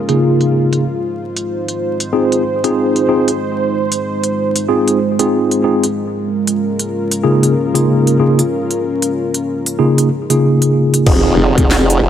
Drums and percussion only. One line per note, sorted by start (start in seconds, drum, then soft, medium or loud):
0.09 closed hi-hat medium
0.41 closed hi-hat soft
0.73 closed hi-hat medium
1.36 closed hi-hat medium
1.68 closed hi-hat soft
2.00 closed hi-hat medium
2.32 closed hi-hat soft
2.64 closed hi-hat medium
2.96 closed hi-hat soft
3.28 closed hi-hat medium
3.92 closed hi-hat medium
4.24 closed hi-hat soft
4.56 closed hi-hat medium
4.88 closed hi-hat soft
5.19 closed hi-hat medium
5.51 closed hi-hat soft
5.84 closed hi-hat medium
6.47 closed hi-hat medium
6.79 closed hi-hat medium
7.11 closed hi-hat medium
7.43 closed hi-hat soft
7.75 closed hi-hat medium
8.07 closed hi-hat soft
8.39 closed hi-hat medium
8.71 closed hi-hat soft
9.02 closed hi-hat medium
9.34 closed hi-hat medium
9.66 closed hi-hat medium
9.98 closed hi-hat medium
10.30 closed hi-hat medium
10.62 closed hi-hat soft
10.94 closed hi-hat medium
11.07 kick loud
11.07 crash loud
11.58 kick loud
11.58 closed hi-hat medium
11.71 snare loud
11.90 closed hi-hat medium